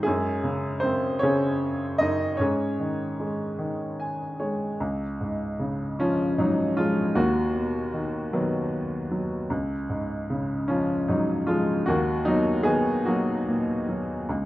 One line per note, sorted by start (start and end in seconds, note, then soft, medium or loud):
0.03 0.81 F#2 medium
0.03 0.78 G#4 medium
0.07 0.80 G#3 medium
0.07 0.80 C#4 medium
0.43 1.21 C#3 soft
0.80 1.98 F#2 soft
0.80 1.21 C5 medium
0.85 1.20 C4 medium
1.19 2.36 C#3 medium
1.19 2.01 C#5 medium
1.23 1.96 C#4 medium
1.23 1.96 G#4 medium
1.98 2.38 F#2 soft
1.98 2.37 D#4 medium
1.98 2.35 D#5 medium
2.37 4.77 G#2 medium
2.37 3.96 C#4 medium
2.37 3.95 C#5 medium
2.41 3.97 G#4 soft
2.80 3.57 D#3 soft
3.20 4.38 G#3 soft
3.59 4.77 D#3 soft
4.00 4.37 G#5 medium
4.40 4.79 G#3 soft
4.40 4.77 C#5 soft
4.80 7.12 C#2 medium
5.21 6.37 G#2 soft
5.59 7.12 C#3 soft
5.99 6.36 F3 medium
5.99 6.40 C#4 medium
5.99 6.75 F4 soft
6.38 7.14 G#2 soft
6.38 6.75 F#3 medium
6.38 6.75 D#4 medium
6.77 7.15 F3 soft
6.77 7.14 G#3 medium
6.77 7.13 F4 medium
7.15 9.46 D#2 medium
7.15 8.29 A#3 medium
7.15 8.29 F#4 medium
7.55 9.07 B2 soft
7.94 8.32 D#3 soft
8.33 9.18 D#3 soft
8.33 9.10 F#3 soft
8.33 9.17 B3 medium
9.11 9.49 F#3 soft
9.50 11.83 C#2 medium
9.89 11.07 G#2 soft
10.30 11.84 C#3 soft
10.68 11.06 F3 medium
10.68 11.09 C#4 medium
10.68 11.45 F4 soft
11.08 11.85 G#2 soft
11.08 11.46 F#3 medium
11.08 11.49 D#4 medium
11.47 11.86 F3 soft
11.47 11.85 G#3 medium
11.47 11.84 F4 medium
11.86 14.25 D#2 medium
11.86 12.24 A#3 medium
11.86 12.23 F#4 medium
12.25 13.84 B2 soft
12.25 12.64 F#3 medium
12.25 12.67 D#4 medium
12.63 13.03 B3 medium
12.63 13.06 G#4 medium
12.67 14.25 D#3 soft
13.05 13.87 F#3 medium
13.05 13.94 A#3 soft
13.05 13.93 F#4 medium
13.48 14.27 A#2 soft
13.89 14.28 F#3 soft
14.29 14.46 C#2 medium